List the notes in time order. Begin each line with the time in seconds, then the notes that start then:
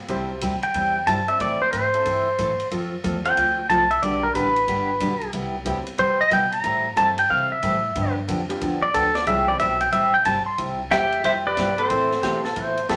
0.08 C2 C3 G3 C4 E4 G4 C5, kick, ride
0.41 D2 C3 G3 C4 E4 G4, kick, hi-hat pedal, ride
0.62 G5, muted upright bass stroke, ride
0.74 E2 C3 G3 C4 E4 G4, kick, ride
1.07 G2 C3 G3 C4 E4 G4 A5, kick, hi-hat pedal, ride
1.28 A3 C4 E4 A4 D5 E5, ride
1.40 A2 E3 A3 C4 E4 A4 D5, kick, ride
1.61 C5, muted upright bass stroke
1.72 G#2 E3 A3 C4 E4 A4 C5, kick, hi-hat pedal, ride
1.94 A3 C4 E4 A4 C5, ride
2.05 G2 E3 A3 C4 E4 A4, kick, ride
2.38 A2 E3 A3 C4 E4 A4, kick, hi-hat pedal, ride
2.60 muted upright bass stroke, ride
2.71 F2 F3 A3 C4 F4 A4, kick, ride
3.04 E2 F3 A3 C4 F4 A4, kick, hi-hat pedal, ride
3.25 A3 C4 F4 A4 C5 G5, ride
3.37 D2 F3 A3 C4 F4 A4, kick, ride
3.70 C2 F3 A3 C4 F4 A4 A5, kick, hi-hat pedal, ride
3.91 E5, ride
4.02 B1 D3 G3 B3 D4 G4 D5, kick, ride
4.23 A#4
4.34 A1 D3 G3 B3 D4 G4 B4, kick, hi-hat pedal, ride
4.56 ride
4.68 G1 D3 G3 B3 D4 G4, kick, ride
5.00 B1 D3 G3 B3 D4 G4, kick, hi-hat pedal, ride
5.21 ride
5.33 C2 C3 G3 B3 E4 G4, kick, ride
5.65 D2 C3 G3 B3 C4 E4 G4, kick, hi-hat pedal, ride
5.87 ride
5.98 E2 C3 G3 B3 E4 G4 C5, kick, ride
6.21 D#5
6.30 B2 C3 G3 B3 E4 G4 G5, kick, hi-hat pedal, ride
6.52 A#5, ride
6.63 A2 E3 G3 C4 E4 A4, kick, ride
6.96 G2 E3 G3 A3 C4 E4 G4 A4 A5, kick, hi-hat pedal, ride
7.18 G5, ride
7.29 C3 E3 G3 C4 E4 A4 F5, kick
7.52 E5
7.62 A2 E3 G3 C4 E4 A4, kick, hi-hat pedal, ride
7.95 G2 D3 F3 B3 D4 G4, kick, ride
8.28 F2 D3 F3 B3 D4 G4, kick, hi-hat pedal, ride
8.49 G3 B3 D4 F4 G4, ride
8.61 E2 D3 F3 B3 D4 G4, kick, ride
8.82 D5
8.94 D2 D3 F3 B3 D4 G4 A4, kick, hi-hat pedal, ride
9.15 D5, snare, ride
9.26 C2 C3 F3 G3 G#3 C4 C#4 E4 F4 G4 G#4 E5, kick, ride
9.47 E3 G3 C4 E4 G4 D5
9.59 B1 C3 G3 C4 E4 G4 E5, kick, hi-hat pedal, ride
9.80 G5, ride
9.92 A1 C3 G3 C4 E4 G4 E5, kick, ride
10.14 G5
10.25 G1 C3 G3 C4 E4 G4 A5, kick, hi-hat pedal, ride
10.46 C6, muted upright bass stroke
10.58 C2 C3 G3 C4 E4 G4, kick, ride
10.90 E2 C3 G3 C4 E4 G4 E5 G5, kick, snare, hi-hat pedal, ride
11.12 ride
11.24 F2 C3 G3 C4 E4 G4 C5 E5, kick, ride
11.46 G4 B4 D5
11.57 G2 C3 G3 C4 E4 G4, kick, snare, hi-hat pedal, ride
11.78 C4 A4 C5, ride
11.90 A2 E3 A3 C4 E4 A4, kick, ride
12.11 snare
12.22 B2 E3 A3 C4 E4 G4 A4 C5, kick, snare, hi-hat pedal, ride
12.44 A4, snare
12.56 A2 E3 A3 C4 E4 A4 C5, kick, ride
12.77 ride
12.89 G2 E3 A3 C4 E4 G4 A4, kick, snare, hi-hat pedal, ride